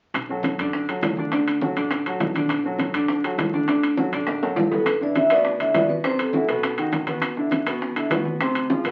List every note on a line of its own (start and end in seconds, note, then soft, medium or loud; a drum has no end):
0.14 0.55 B1 medium
0.14 high bongo medium
0.14 high conga soft
0.14 high timbale medium
0.29 0.54 F#3 medium
0.29 0.54 F#4 medium
0.29 0.54 A4 medium
0.29 high bongo soft
0.29 high conga soft
0.43 high bongo medium
0.43 high conga medium
0.43 high timbale medium
0.59 1.00 F#2 medium
0.59 0.83 D3 medium
0.59 0.84 D4 medium
0.59 0.84 D5 medium
0.59 high bongo soft
0.59 high timbale medium
0.73 high bongo soft
0.73 high conga soft
0.88 1.13 F#3 medium
0.88 1.13 F#4 medium
0.88 1.13 A4 medium
0.88 high conga soft
0.88 high timbale medium
1.02 1.71 D2 medium
1.02 high bongo soft
1.02 low bongo medium
1.02 high conga medium
1.02 high timbale medium
1.02 low timbale medium
1.17 1.30 D3 medium
1.17 1.30 D4 medium
1.17 1.31 D5 medium
1.17 high bongo soft
1.17 high conga medium
1.32 1.57 D3 medium
1.32 1.57 D4 medium
1.32 1.57 D5 medium
1.32 high bongo medium
1.32 high conga soft
1.32 high timbale medium
1.47 high bongo soft
1.47 high conga soft
1.47 high timbale medium
1.61 1.74 F#3 medium
1.61 1.74 F#4 medium
1.61 1.74 A4 medium
1.61 high bongo medium
1.61 high conga medium
1.76 2.04 A1 medium
1.76 2.01 D3 medium
1.76 2.01 D4 medium
1.76 2.01 D5 medium
1.76 high bongo soft
1.76 high conga soft
1.76 high timbale medium
1.91 high bongo medium
1.91 high conga soft
1.91 high timbale medium
2.06 2.20 A1 medium
2.06 2.31 F#3 medium
2.06 2.31 F#4 medium
2.06 2.31 A4 medium
2.06 high conga soft
2.06 high timbale medium
2.20 2.89 B1 medium
2.20 high bongo soft
2.20 low bongo medium
2.20 high conga medium
2.20 high timbale medium
2.20 low timbale medium
2.35 2.60 D3 medium
2.35 2.60 D4 medium
2.35 2.60 D5 medium
2.35 high bongo soft
2.35 high conga medium
2.35 high timbale medium
2.49 high bongo medium
2.49 high conga soft
2.49 high timbale medium
2.64 2.89 F#3 medium
2.64 2.90 F#4 medium
2.64 2.90 A4 medium
2.64 high bongo soft
2.64 high conga soft
2.78 high bongo medium
2.78 high conga medium
2.78 high timbale medium
2.94 3.35 F#2 medium
2.94 3.19 D3 medium
2.94 3.19 D4 medium
2.94 3.19 D5 medium
2.94 high bongo soft
2.94 high timbale medium
3.08 high bongo medium
3.08 high conga soft
3.24 3.48 F#3 medium
3.24 3.48 F#4 medium
3.24 3.49 A4 medium
3.24 high conga soft
3.24 high timbale medium
3.38 4.07 D2 medium
3.38 high bongo soft
3.38 low bongo medium
3.38 high conga medium
3.38 high timbale medium
3.38 low timbale medium
3.53 3.66 D3 medium
3.53 3.66 D4 medium
3.53 3.66 D5 medium
3.53 high bongo soft
3.53 high conga medium
3.68 3.92 D3 medium
3.68 3.93 D4 medium
3.68 3.93 D5 medium
3.68 high bongo medium
3.68 high conga soft
3.68 high timbale medium
3.83 high bongo soft
3.83 high conga soft
3.83 high timbale medium
3.97 4.10 F#3 medium
3.97 4.10 F#4 medium
3.97 4.10 A4 medium
3.97 high bongo medium
3.97 high conga medium
4.12 4.53 A1 medium
4.12 4.37 D3 medium
4.12 4.37 D4 medium
4.12 4.37 D5 medium
4.12 high bongo soft
4.12 high conga soft
4.12 high timbale medium
4.27 high bongo medium
4.27 high conga soft
4.27 high timbale medium
4.42 4.66 F#3 medium
4.42 4.67 F#4 medium
4.42 4.67 A4 medium
4.42 high conga soft
4.42 high timbale medium
4.56 5.25 G1 medium
4.56 4.72 A4 medium
4.56 high bongo soft
4.56 low bongo medium
4.56 high conga medium
4.56 low timbale medium
4.71 4.84 B2 medium
4.71 4.84 B3 medium
4.71 4.88 A4 medium
4.71 4.84 B4 medium
4.71 high bongo soft
4.71 high conga medium
4.71 low timbale medium
4.86 5.02 B4 medium
4.86 high bongo medium
4.86 high conga soft
4.86 high timbale medium
5.01 5.25 D3 medium
5.01 5.26 D4 medium
5.01 5.26 E4 medium
5.01 5.17 D5 medium
5.01 high bongo soft
5.01 high conga soft
5.15 5.23 E5 medium
5.15 high bongo medium
5.15 high conga medium
5.15 high timbale medium
5.30 5.71 D2 medium
5.30 5.55 B2 medium
5.30 5.55 B3 medium
5.30 5.55 B4 medium
5.30 5.59 D5 medium
5.30 high bongo soft
5.30 high timbale medium
5.45 high bongo medium
5.45 high conga soft
5.59 5.72 D3 medium
5.59 5.73 D4 medium
5.59 5.73 E4 medium
5.59 5.75 E5 medium
5.59 high conga soft
5.59 high timbale medium
5.74 6.43 F#2 medium
5.74 5.99 B2 medium
5.74 5.99 B3 medium
5.74 5.99 B4 medium
5.74 5.90 D5 medium
5.74 high bongo soft
5.74 low bongo medium
5.74 high conga medium
5.74 high timbale medium
5.74 low timbale medium
5.89 6.03 B4 medium
5.89 high bongo soft
5.89 high conga medium
6.04 6.28 C3 medium
6.04 6.29 C4 medium
6.04 6.29 C5 medium
6.04 6.18 C5 medium
6.04 high bongo medium
6.04 high timbale medium
6.18 6.74 A4 medium
6.18 high bongo soft
6.18 high conga soft
6.18 high timbale medium
6.33 6.46 E3 medium
6.33 6.46 E4 medium
6.33 6.46 F#4 medium
6.33 high bongo medium
6.33 high conga medium
6.48 6.76 B1 medium
6.48 6.72 B2 medium
6.48 6.73 B3 medium
6.48 6.73 B4 medium
6.48 high bongo soft
6.48 high conga soft
6.48 high timbale medium
6.63 high bongo medium
6.63 high conga soft
6.63 high timbale medium
6.77 6.92 D#2 medium
6.77 7.02 D#3 medium
6.77 7.02 D#4 medium
6.77 7.03 F#4 medium
6.77 high conga soft
6.77 high timbale medium
6.92 7.61 E2 medium
6.92 high bongo soft
6.92 low bongo medium
6.92 high conga medium
6.92 high timbale medium
7.07 7.32 B2 medium
7.07 7.32 B3 medium
7.07 7.32 B4 medium
7.07 high bongo soft
7.07 high conga medium
7.07 high timbale medium
7.21 high bongo medium
7.21 high conga soft
7.21 high timbale medium
7.37 7.61 D3 medium
7.37 7.61 D4 medium
7.37 7.62 E4 medium
7.37 high bongo soft
7.37 high conga soft
7.51 high bongo medium
7.51 high conga medium
7.51 high timbale medium
7.66 8.07 E2 medium
7.66 7.91 B2 medium
7.66 7.91 B3 medium
7.66 7.91 B4 medium
7.66 high bongo soft
7.66 high timbale medium
7.81 high bongo medium
7.81 high conga soft
7.95 8.08 D3 medium
7.95 8.08 D4 medium
7.95 8.08 E4 medium
7.95 high conga soft
7.95 high timbale medium
8.10 8.79 D2 medium
8.10 8.35 B2 medium
8.10 8.35 B3 medium
8.10 8.36 B4 medium
8.10 high bongo soft
8.10 low bongo medium
8.10 high conga medium
8.10 high timbale medium
8.10 low timbale medium
8.25 high bongo soft
8.25 high conga medium
8.40 8.65 C3 medium
8.40 8.65 C4 medium
8.40 8.65 C5 medium
8.40 high bongo medium
8.40 high conga soft
8.40 high timbale medium
8.55 high bongo soft
8.55 high conga soft
8.55 high timbale medium
8.70 8.82 F3 medium
8.70 8.83 F4 medium
8.70 8.83 G#4 medium
8.70 high bongo medium
8.70 high conga medium
8.84 8.91 G1 medium
8.84 8.91 B2 medium
8.84 8.91 B3 medium
8.84 8.91 B4 medium
8.84 high bongo soft
8.84 high conga soft
8.84 high timbale medium